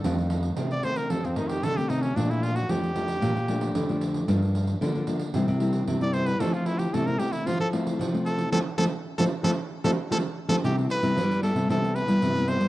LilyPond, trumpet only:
\new Staff \with { instrumentName = "Trumpet" } { \time 4/4 \key f \major \tempo 4 = 113 a'16 r4 d''16 c''16 bes'16 a'16 c'16 ees'16 g'16 a'16 g'16 ees'16 des'16 | d'16 e'16 f'16 ges'16 g'2. | r2. r16 d''16 c''16 b'16 | a'16 f'16 e'16 g'16 a'16 bes'16 g'16 e'16 f'16 a'16 r4 a'8 |
a'16 r16 a'16 r8 a'16 r16 a'16 r8 a'16 r16 a'16 r8 a'16 | \key c \major g'8 b'4 a'8 a'8 b'4 c''8 | }